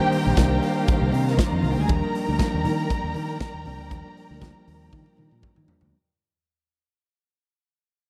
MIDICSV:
0, 0, Header, 1, 6, 480
1, 0, Start_track
1, 0, Tempo, 505476
1, 1795, Time_signature, 4, 2, 24, 8
1, 7689, End_track
2, 0, Start_track
2, 0, Title_t, "String section"
2, 0, Program_c, 0, 48
2, 0, Note_on_c, 0, 51, 81
2, 0, Note_on_c, 0, 72, 76
2, 0, Note_on_c, 0, 77, 73
2, 0, Note_on_c, 0, 82, 87
2, 1760, Note_off_c, 0, 72, 0
2, 1778, Note_off_c, 0, 77, 0
2, 1795, Note_on_c, 0, 74, 70
2, 1799, Note_on_c, 0, 79, 74
2, 5599, Note_off_c, 0, 74, 0
2, 5601, Note_off_c, 0, 79, 0
2, 5604, Note_off_c, 0, 82, 0
2, 5606, Note_off_c, 0, 51, 0
2, 7689, End_track
3, 0, Start_track
3, 0, Title_t, "Violin section"
3, 0, Program_c, 1, 48
3, 0, Note_on_c, 1, 67, 110
3, 0, Note_on_c, 1, 79, 126
3, 1162, Note_off_c, 1, 79, 0
3, 1163, Note_off_c, 1, 67, 0
3, 1232, Note_on_c, 1, 58, 60
3, 1235, Note_on_c, 1, 70, 71
3, 1311, Note_on_c, 1, 60, 72
3, 1313, Note_off_c, 1, 58, 0
3, 1313, Note_on_c, 1, 72, 78
3, 1315, Note_off_c, 1, 70, 0
3, 1385, Note_on_c, 1, 74, 81
3, 1392, Note_on_c, 1, 62, 68
3, 1393, Note_off_c, 1, 60, 0
3, 1394, Note_off_c, 1, 72, 0
3, 1462, Note_on_c, 1, 75, 88
3, 1464, Note_on_c, 1, 63, 83
3, 1470, Note_off_c, 1, 74, 0
3, 1473, Note_off_c, 1, 62, 0
3, 1547, Note_on_c, 1, 65, 81
3, 1547, Note_on_c, 1, 77, 78
3, 1548, Note_off_c, 1, 75, 0
3, 1550, Note_off_c, 1, 63, 0
3, 1631, Note_off_c, 1, 65, 0
3, 1631, Note_off_c, 1, 77, 0
3, 1631, Note_on_c, 1, 79, 87
3, 1633, Note_on_c, 1, 67, 76
3, 1713, Note_off_c, 1, 79, 0
3, 1714, Note_off_c, 1, 67, 0
3, 1721, Note_on_c, 1, 68, 93
3, 1721, Note_on_c, 1, 80, 98
3, 1797, Note_on_c, 1, 70, 111
3, 1798, Note_off_c, 1, 68, 0
3, 1798, Note_off_c, 1, 80, 0
3, 1803, Note_on_c, 1, 82, 122
3, 5360, Note_off_c, 1, 70, 0
3, 5363, Note_off_c, 1, 82, 0
3, 7689, End_track
4, 0, Start_track
4, 0, Title_t, "Tine electric piano"
4, 0, Program_c, 2, 4
4, 0, Control_c, 2, 64, 127
4, 0, Note_on_c, 2, 51, 95
4, 0, Note_on_c, 2, 55, 77
4, 0, Note_on_c, 2, 58, 79
4, 0, Note_on_c, 2, 62, 100
4, 270, Note_off_c, 2, 51, 0
4, 273, Note_off_c, 2, 55, 0
4, 275, Note_off_c, 2, 58, 0
4, 279, Note_off_c, 2, 62, 0
4, 343, Note_on_c, 2, 51, 88
4, 354, Note_on_c, 2, 55, 86
4, 356, Note_on_c, 2, 58, 83
4, 360, Note_on_c, 2, 62, 104
4, 1143, Note_off_c, 2, 51, 0
4, 1148, Note_off_c, 2, 55, 0
4, 1149, Note_off_c, 2, 58, 0
4, 1151, Note_off_c, 2, 62, 0
4, 1545, Note_on_c, 2, 51, 76
4, 1554, Note_on_c, 2, 55, 69
4, 1559, Note_on_c, 2, 58, 70
4, 1564, Note_on_c, 2, 62, 81
4, 1750, Note_off_c, 2, 51, 0
4, 1755, Note_off_c, 2, 55, 0
4, 1757, Note_off_c, 2, 58, 0
4, 1759, Note_off_c, 2, 62, 0
4, 1788, Note_on_c, 2, 53, 88
4, 1790, Note_on_c, 2, 55, 80
4, 1798, Note_on_c, 2, 58, 85
4, 1802, Note_on_c, 2, 62, 91
4, 1805, Control_c, 2, 64, 0
4, 1961, Control_c, 2, 64, 127
4, 2192, Note_off_c, 2, 53, 0
4, 2193, Note_off_c, 2, 55, 0
4, 2197, Note_off_c, 2, 58, 0
4, 2199, Note_off_c, 2, 62, 0
4, 2266, Note_on_c, 2, 53, 98
4, 2269, Note_on_c, 2, 55, 89
4, 2276, Note_on_c, 2, 58, 85
4, 2279, Note_on_c, 2, 62, 105
4, 3065, Note_off_c, 2, 53, 0
4, 3067, Note_off_c, 2, 55, 0
4, 3070, Note_off_c, 2, 58, 0
4, 3071, Note_off_c, 2, 62, 0
4, 3466, Note_on_c, 2, 53, 82
4, 3475, Note_on_c, 2, 55, 68
4, 3476, Note_on_c, 2, 58, 71
4, 3485, Note_on_c, 2, 62, 85
4, 3671, Note_off_c, 2, 53, 0
4, 3676, Note_off_c, 2, 55, 0
4, 3676, Note_off_c, 2, 58, 0
4, 3681, Note_off_c, 2, 62, 0
4, 3701, Note_on_c, 2, 53, 87
4, 3703, Note_on_c, 2, 55, 78
4, 3713, Note_on_c, 2, 58, 71
4, 3713, Note_on_c, 2, 62, 96
4, 4109, Note_off_c, 2, 53, 0
4, 4110, Note_off_c, 2, 55, 0
4, 4115, Note_off_c, 2, 58, 0
4, 4115, Note_off_c, 2, 62, 0
4, 4177, Note_on_c, 2, 53, 100
4, 4183, Note_on_c, 2, 55, 87
4, 4187, Note_on_c, 2, 58, 81
4, 4190, Note_on_c, 2, 65, 99
4, 4981, Note_off_c, 2, 53, 0
4, 4984, Note_off_c, 2, 55, 0
4, 4985, Note_off_c, 2, 58, 0
4, 4987, Note_off_c, 2, 65, 0
4, 5380, Note_on_c, 2, 53, 79
4, 5387, Note_on_c, 2, 55, 74
4, 5390, Note_on_c, 2, 58, 64
4, 5396, Note_on_c, 2, 62, 89
4, 5588, Note_off_c, 2, 53, 0
4, 5591, Note_off_c, 2, 55, 0
4, 5593, Note_off_c, 2, 58, 0
4, 5596, Note_off_c, 2, 62, 0
4, 5650, Control_c, 2, 64, 0
4, 7689, End_track
5, 0, Start_track
5, 0, Title_t, "Fingered electric bass"
5, 0, Program_c, 3, 33
5, 252, Note_on_c, 3, 34, 82
5, 340, Note_off_c, 3, 34, 0
5, 354, Note_on_c, 3, 36, 79
5, 552, Note_off_c, 3, 36, 0
5, 966, Note_on_c, 3, 36, 104
5, 1057, Note_off_c, 3, 36, 0
5, 1076, Note_on_c, 3, 48, 90
5, 1274, Note_off_c, 3, 48, 0
5, 1447, Note_on_c, 3, 41, 87
5, 1538, Note_off_c, 3, 41, 0
5, 1559, Note_on_c, 3, 36, 90
5, 1663, Note_off_c, 3, 36, 0
5, 1683, Note_on_c, 3, 38, 86
5, 1776, Note_off_c, 3, 38, 0
5, 1801, Note_on_c, 3, 39, 110
5, 1904, Note_off_c, 3, 39, 0
5, 2170, Note_on_c, 3, 38, 91
5, 2261, Note_off_c, 3, 38, 0
5, 2412, Note_on_c, 3, 39, 96
5, 2502, Note_off_c, 3, 39, 0
5, 2521, Note_on_c, 3, 51, 104
5, 2717, Note_off_c, 3, 51, 0
5, 2887, Note_on_c, 3, 39, 103
5, 2979, Note_off_c, 3, 39, 0
5, 2996, Note_on_c, 3, 51, 104
5, 3195, Note_off_c, 3, 51, 0
5, 3361, Note_on_c, 3, 39, 81
5, 3455, Note_off_c, 3, 39, 0
5, 3479, Note_on_c, 3, 36, 87
5, 3607, Note_off_c, 3, 36, 0
5, 3607, Note_on_c, 3, 38, 76
5, 3699, Note_off_c, 3, 38, 0
5, 3715, Note_on_c, 3, 39, 92
5, 3821, Note_off_c, 3, 39, 0
5, 4089, Note_on_c, 3, 38, 83
5, 4285, Note_off_c, 3, 38, 0
5, 4440, Note_on_c, 3, 39, 96
5, 4637, Note_off_c, 3, 39, 0
5, 4681, Note_on_c, 3, 51, 106
5, 4785, Note_off_c, 3, 51, 0
5, 4923, Note_on_c, 3, 51, 91
5, 5026, Note_off_c, 3, 51, 0
5, 5048, Note_on_c, 3, 46, 81
5, 5139, Note_off_c, 3, 46, 0
5, 5293, Note_on_c, 3, 51, 78
5, 5382, Note_off_c, 3, 51, 0
5, 5528, Note_on_c, 3, 38, 74
5, 5620, Note_off_c, 3, 38, 0
5, 7689, End_track
6, 0, Start_track
6, 0, Title_t, "Drums"
6, 116, Note_on_c, 9, 46, 67
6, 211, Note_off_c, 9, 46, 0
6, 348, Note_on_c, 9, 42, 62
6, 352, Note_on_c, 9, 63, 89
6, 353, Note_on_c, 9, 36, 111
6, 358, Note_on_c, 9, 38, 98
6, 443, Note_off_c, 9, 42, 0
6, 447, Note_off_c, 9, 63, 0
6, 448, Note_off_c, 9, 36, 0
6, 453, Note_off_c, 9, 38, 0
6, 594, Note_on_c, 9, 46, 63
6, 689, Note_off_c, 9, 46, 0
6, 828, Note_on_c, 9, 62, 49
6, 835, Note_on_c, 9, 42, 80
6, 839, Note_on_c, 9, 36, 125
6, 923, Note_off_c, 9, 62, 0
6, 930, Note_off_c, 9, 42, 0
6, 934, Note_off_c, 9, 36, 0
6, 1067, Note_on_c, 9, 62, 57
6, 1082, Note_on_c, 9, 46, 66
6, 1162, Note_off_c, 9, 62, 0
6, 1177, Note_off_c, 9, 46, 0
6, 1211, Note_on_c, 9, 38, 33
6, 1305, Note_on_c, 9, 63, 94
6, 1306, Note_off_c, 9, 38, 0
6, 1317, Note_on_c, 9, 36, 118
6, 1321, Note_on_c, 9, 38, 122
6, 1321, Note_on_c, 9, 42, 84
6, 1400, Note_off_c, 9, 63, 0
6, 1412, Note_off_c, 9, 36, 0
6, 1416, Note_off_c, 9, 38, 0
6, 1416, Note_off_c, 9, 42, 0
6, 1546, Note_on_c, 9, 63, 76
6, 1558, Note_on_c, 9, 46, 73
6, 1641, Note_off_c, 9, 63, 0
6, 1653, Note_off_c, 9, 46, 0
6, 1788, Note_on_c, 9, 62, 55
6, 1798, Note_on_c, 9, 36, 123
6, 1798, Note_on_c, 9, 42, 63
6, 1883, Note_off_c, 9, 62, 0
6, 1893, Note_off_c, 9, 36, 0
6, 1893, Note_off_c, 9, 42, 0
6, 2020, Note_on_c, 9, 62, 30
6, 2042, Note_on_c, 9, 46, 62
6, 2115, Note_off_c, 9, 62, 0
6, 2137, Note_off_c, 9, 46, 0
6, 2269, Note_on_c, 9, 63, 84
6, 2274, Note_on_c, 9, 36, 117
6, 2274, Note_on_c, 9, 42, 64
6, 2284, Note_on_c, 9, 38, 102
6, 2364, Note_off_c, 9, 63, 0
6, 2369, Note_off_c, 9, 36, 0
6, 2369, Note_off_c, 9, 42, 0
6, 2379, Note_off_c, 9, 38, 0
6, 2512, Note_on_c, 9, 64, 79
6, 2517, Note_on_c, 9, 46, 67
6, 2607, Note_off_c, 9, 64, 0
6, 2612, Note_off_c, 9, 46, 0
6, 2747, Note_on_c, 9, 62, 54
6, 2757, Note_on_c, 9, 36, 106
6, 2758, Note_on_c, 9, 42, 74
6, 2842, Note_off_c, 9, 62, 0
6, 2852, Note_off_c, 9, 36, 0
6, 2853, Note_off_c, 9, 42, 0
6, 2985, Note_on_c, 9, 62, 56
6, 2997, Note_on_c, 9, 46, 69
6, 3080, Note_off_c, 9, 62, 0
6, 3092, Note_off_c, 9, 46, 0
6, 3231, Note_on_c, 9, 63, 92
6, 3234, Note_on_c, 9, 36, 127
6, 3237, Note_on_c, 9, 38, 115
6, 3237, Note_on_c, 9, 42, 73
6, 3326, Note_off_c, 9, 63, 0
6, 3329, Note_off_c, 9, 36, 0
6, 3332, Note_off_c, 9, 38, 0
6, 3332, Note_off_c, 9, 42, 0
6, 3469, Note_on_c, 9, 46, 76
6, 3472, Note_on_c, 9, 63, 79
6, 3563, Note_off_c, 9, 46, 0
6, 3567, Note_off_c, 9, 63, 0
6, 3713, Note_on_c, 9, 42, 63
6, 3713, Note_on_c, 9, 62, 55
6, 3714, Note_on_c, 9, 36, 113
6, 3808, Note_off_c, 9, 42, 0
6, 3808, Note_off_c, 9, 62, 0
6, 3809, Note_off_c, 9, 36, 0
6, 3962, Note_on_c, 9, 46, 63
6, 4057, Note_off_c, 9, 46, 0
6, 4191, Note_on_c, 9, 63, 89
6, 4194, Note_on_c, 9, 36, 100
6, 4198, Note_on_c, 9, 42, 64
6, 4208, Note_on_c, 9, 38, 86
6, 4286, Note_off_c, 9, 63, 0
6, 4289, Note_off_c, 9, 36, 0
6, 4293, Note_off_c, 9, 42, 0
6, 4303, Note_off_c, 9, 38, 0
6, 4441, Note_on_c, 9, 46, 70
6, 4536, Note_off_c, 9, 46, 0
6, 4670, Note_on_c, 9, 62, 49
6, 4679, Note_on_c, 9, 36, 115
6, 4682, Note_on_c, 9, 48, 64
6, 4765, Note_off_c, 9, 62, 0
6, 4774, Note_off_c, 9, 36, 0
6, 4777, Note_off_c, 9, 48, 0
6, 4805, Note_on_c, 9, 48, 61
6, 4900, Note_off_c, 9, 48, 0
6, 4909, Note_on_c, 9, 62, 52
6, 4922, Note_on_c, 9, 47, 71
6, 5004, Note_off_c, 9, 62, 0
6, 5017, Note_off_c, 9, 47, 0
6, 5046, Note_on_c, 9, 47, 60
6, 5141, Note_off_c, 9, 47, 0
6, 5149, Note_on_c, 9, 63, 83
6, 5157, Note_on_c, 9, 36, 118
6, 5160, Note_on_c, 9, 45, 91
6, 5244, Note_off_c, 9, 63, 0
6, 5252, Note_off_c, 9, 36, 0
6, 5255, Note_off_c, 9, 45, 0
6, 5283, Note_on_c, 9, 45, 84
6, 5377, Note_off_c, 9, 45, 0
6, 5395, Note_on_c, 9, 43, 119
6, 5397, Note_on_c, 9, 63, 73
6, 5490, Note_off_c, 9, 43, 0
6, 5492, Note_off_c, 9, 63, 0
6, 5518, Note_on_c, 9, 43, 94
6, 5613, Note_off_c, 9, 43, 0
6, 7689, End_track
0, 0, End_of_file